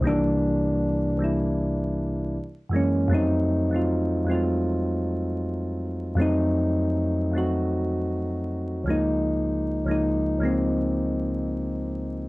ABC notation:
X:1
M:4/4
L:1/16
Q:"Swing 16ths" 1/4=78
K:Fphr
V:1 name="Synth keys" clef=bass
[C,,E,=E,=G,B,=D]4- [C,,_E,=E,G,B,D] z [C,,E,G,B,=E]6 z2 [_G,,_F,A,B,_D]2 | [F,,G,=A,CE]3 [F,,G,A,CF]3 [F,,G,_A,=A,CF]6- [F,,G,_A,=A,CF] z3 | [F,,G,=A,CE]4- [F,,G,A,CE] z [F,,G,A,CG]6- [F,,G,A,CG] z [D,,F,_A,B,E]2- | [D,,F,A,B,E]2 z [D,,F,A,B,E]3 [D,,F,A,B,C]6- [D,,F,A,B,C] z3 |]